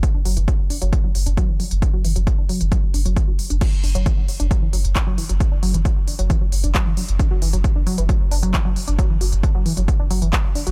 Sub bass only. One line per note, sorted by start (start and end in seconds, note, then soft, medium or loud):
0.14 0.25 F#1 medium
0.25 0.36 F#1 loud
0.37 0.48 F#1 medium
0.59 0.70 F#1 medium
0.82 0.92 F#1 medium
1.04 1.14 F#1 medium
1.15 1.26 F#1 loud
1.26 1.37 F#1 medium
1.49 1.60 F#1 medium
1.71 1.82 F#1 medium
1.94 2.04 F#1 medium
2.05 2.15 F#1 loud
2.16 2.27 F#1 medium
2.38 2.49 F#1 medium
2.61 2.72 F#1 medium
2.83 2.94 F#1 medium
2.94 3.05 F#1 loud
3.06 3.16 F#1 medium
3.28 3.39 F#1 medium
3.50 3.61 F#1 medium
3.73 3.83 F#1 medium
3.84 3.94 F#1 loud
3.95 4.06 F#1 medium
4.17 4.28 F#1 medium
4.40 4.51 F#1 medium
4.62 4.73 F#1 medium
4.73 4.84 F#1 medium
4.85 4.95 F#1 medium
5.07 5.18 F#1 medium
5.29 5.40 F#1 medium
5.52 5.62 F#1 medium
5.63 5.74 F#1 loud
5.74 5.85 F#1 medium
5.97 6.07 F#1 medium
6.19 6.30 F#1 medium
6.41 6.52 F#1 medium
6.52 6.63 F#1 loud
6.64 6.75 F#1 medium
6.86 6.97 F#1 medium
7.09 7.19 F#1 medium
7.31 7.41 F#1 medium
7.42 7.53 F#1 loud
7.53 7.64 F#1 medium
7.76 7.86 F#1 medium
7.98 8.09 F#1 medium
8.20 8.31 F#1 medium
8.31 8.42 F#1 loud
8.43 8.54 F#1 medium
8.65 8.76 F#1 medium
8.88 8.98 F#1 medium
9.10 9.20 F#1 medium
9.21 9.32 F#1 loud
9.32 9.43 F#1 medium
9.55 9.66 F#1 medium
9.77 9.88 F#1 medium
9.99 10.10 F#1 medium
10.10 10.21 F#1 loud
10.22 10.33 F#1 medium
10.44 10.55 F#1 medium
10.67 10.71 F#1 medium